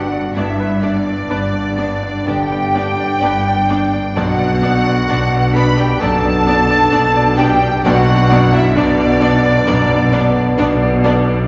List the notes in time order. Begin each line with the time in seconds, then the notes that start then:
Already playing: G1 G2 D3 B3 D4 F#4 B4 D5 F#5
0.13 D5
0.34 G1 G2 B3 D4 E4 D5 E5
0.60 B4
0.81 B3 D4 D5
1.07 D5
1.29 G1 G2 B3 D4 B4 D5
1.54 D5
1.77 B3 D4 D5
2.03 D5
2.26 G1 G2 D3 B3 D4 G4 D5 G5
2.52 D5
2.75 B3 D4 D5
3.00 D5
3.21 G1 G2 B3 D4 B4 D5
3.47 D5
3.69 B3 D4 D5
3.93 D5
4.15 B1 B2 B3 D4 F#4 D5 F#5
4.40 D5
4.62 B3 D4 D5
4.87 D5
5.08 B1 B2 B3 D4 D5
5.34 D5
5.54 B3 D4 B4 D5 B5
5.78 G4 D5 G5
6.00 B1 F#2 B2 B3 D4 A4 D5 A5
6.25 D5
6.46 B3 D4 D5
6.70 D5
6.91 B1 B2 B3 D4 D5
7.17 D5
7.37 B3 D4 G4 D5 G5
7.63 D5
7.84 B1 B2 B3 D4 F#4 D5 F#5
8.10 D4
8.30 F#2 B3 D4 D5
8.53 E4 D5 E5
8.75 B1 B2 B3 D4 D5
9.00 D5
9.21 B3 D4 D5
9.46 D5
9.66 B1 F#2 B2 B3 D4 D5
9.91 D5
10.12 B3 D4 D5
10.37 D5
10.58 B1 B2 B3 D4 D5
10.83 D5
11.04 B3 D4 D5
11.28 D5